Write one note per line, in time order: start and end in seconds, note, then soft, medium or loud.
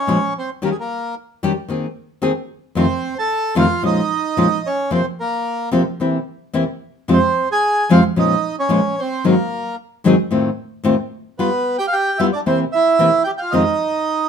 0.00 0.34 C#4 medium
0.00 0.34 C#5 medium
0.07 0.17 A#2 medium
0.07 0.17 F3 medium
0.07 0.17 G#3 medium
0.07 0.17 C#4 medium
0.07 0.17 F4 medium
0.38 0.49 C4 medium
0.38 0.50 C5 medium
0.62 0.71 D#3 medium
0.62 0.71 G3 medium
0.62 0.70 A#3 soft
0.62 0.71 C#4 medium
0.62 0.71 G4 medium
0.62 0.70 A#4 medium
0.71 0.77 G#4 soft
0.79 1.14 A#3 medium
0.79 1.15 A#4 medium
1.43 1.51 D#3 medium
1.43 1.51 G3 medium
1.43 1.52 C#4 medium
1.43 1.52 G4 medium
1.68 1.85 D#3 medium
1.68 1.86 A#3 medium
1.68 1.86 C4 medium
1.68 1.86 G#4 medium
2.22 2.31 D#3 medium
2.22 2.31 A#3 medium
2.22 2.31 C4 medium
2.22 2.31 G#4 medium
2.75 2.84 F2 medium
2.75 2.85 C3 medium
2.75 2.85 D#3 medium
2.75 2.85 A3 medium
2.75 2.85 C4 medium
2.75 3.15 C4 medium
2.75 2.85 F4 medium
2.75 3.17 C5 medium
3.19 3.55 A4 medium
3.19 3.55 A5 medium
3.55 3.64 F2 medium
3.55 3.65 C3 medium
3.55 3.65 D#3 medium
3.55 3.65 A3 medium
3.55 3.65 C4 medium
3.55 3.65 F4 medium
3.55 3.82 F5 medium
3.60 3.83 F4 medium
3.82 4.00 A#2 medium
3.82 4.00 F3 medium
3.82 4.00 G#3 medium
3.82 4.00 C#4 medium
3.82 4.62 D#4 medium
3.82 4.00 F4 medium
3.82 4.68 D#5 medium
4.37 4.46 A#2 medium
4.37 4.46 F3 medium
4.37 4.46 G#3 medium
4.37 4.47 C#4 medium
4.37 4.47 F4 medium
4.66 4.91 C#4 soft
4.66 4.91 C#5 medium
4.91 5.00 C3 medium
4.91 5.00 F3 medium
4.91 5.00 A#3 medium
4.91 5.01 C4 medium
4.91 5.01 F4 medium
4.91 5.05 C5 medium
4.95 5.06 C4 medium
5.20 5.70 A#3 medium
5.20 5.70 A#4 medium
5.72 5.81 C3 medium
5.72 5.81 F3 medium
5.72 5.81 A#3 medium
5.72 5.82 C4 medium
5.72 5.82 F4 medium
6.00 6.17 C3 soft
6.00 6.17 E3 soft
6.00 6.17 A#3 medium
6.00 6.17 C4 medium
6.00 6.18 E4 medium
6.53 6.63 C3 medium
6.53 6.63 E3 medium
6.53 6.63 A#3 medium
6.53 6.63 C4 medium
6.53 6.64 E4 medium
7.08 7.17 F2 medium
7.08 7.18 C3 medium
7.08 7.18 F3 medium
7.08 7.18 G#3 medium
7.08 7.18 C4 medium
7.08 7.47 C4 medium
7.08 7.18 F4 medium
7.13 7.49 C5 medium
7.51 7.88 G#4 medium
7.51 7.93 G#5 medium
7.89 7.99 F2 medium
7.89 7.99 C3 medium
7.89 7.99 F3 medium
7.89 7.99 G#3 medium
7.89 7.99 C4 medium
7.89 8.00 F4 medium
7.89 8.04 F4 medium
7.89 8.03 F5 medium
8.16 8.34 A#2 medium
8.16 8.34 F3 medium
8.16 8.34 G#3 medium
8.16 8.34 C#4 medium
8.16 8.56 D#4 medium
8.16 8.34 F4 medium
8.16 8.56 D#5 medium
8.59 8.96 C#4 medium
8.59 9.00 C#5 medium
8.69 8.79 A#2 medium
8.69 8.79 F3 medium
8.69 8.79 G#3 medium
8.69 8.80 C#4 medium
8.69 8.80 F4 medium
8.99 9.25 C4 soft
8.99 9.24 C5 medium
9.24 9.34 G#2 medium
9.24 9.34 D#3 medium
9.24 9.34 F#3 medium
9.24 9.76 A#3 soft
9.24 9.34 C4 medium
9.24 9.34 D#4 medium
9.24 9.34 G#4 medium
9.24 9.75 A#4 medium
10.04 10.14 G#2 medium
10.04 10.14 D#3 medium
10.04 10.14 F#3 medium
10.04 10.15 C4 medium
10.04 10.15 D#4 medium
10.04 10.15 G#4 medium
10.31 10.48 A2 medium
10.31 10.49 D#3 medium
10.31 10.49 A3 medium
10.31 10.49 C4 medium
10.31 10.49 F4 medium
10.84 10.94 A2 medium
10.84 10.94 D#3 medium
10.84 10.94 A3 medium
10.84 10.95 C4 medium
10.84 10.95 F4 medium
11.39 11.48 G3 medium
11.39 11.48 B3 medium
11.39 11.77 B3 medium
11.39 11.49 F4 medium
11.39 11.77 B4 medium
11.78 11.86 G4 medium
11.78 11.86 G5 medium
11.87 11.94 F5 medium
11.93 12.18 G4 medium
11.93 12.20 G5 medium
12.18 12.29 G3 medium
12.18 12.29 B3 medium
12.18 12.27 E4 medium
12.18 12.29 F4 medium
12.18 12.25 E5 medium
12.33 12.41 D4 soft
12.33 12.39 D5 medium
12.46 12.63 C3 medium
12.46 12.64 E3 medium
12.46 12.63 A#3 medium
12.46 12.64 C4 medium
12.46 12.60 C4 medium
12.46 12.64 E4 medium
12.46 12.59 C5 medium
12.72 13.24 E4 medium
12.72 13.22 E5 medium
12.99 13.08 C3 medium
12.99 13.08 E3 medium
12.99 13.09 A#3 medium
12.99 13.09 C4 medium
12.99 13.09 E4 medium
13.24 13.31 G4 medium
13.24 13.29 G5 medium
13.37 13.53 F5 medium
13.37 13.40 G5 medium
13.43 13.54 F4 medium
13.51 13.62 F2 medium
13.51 13.62 C3 medium
13.51 13.62 D#3 medium
13.51 13.63 G#3 medium
13.51 13.62 C4 medium
13.51 14.29 D#4 medium
13.51 13.63 F4 medium
13.51 14.29 D#5 medium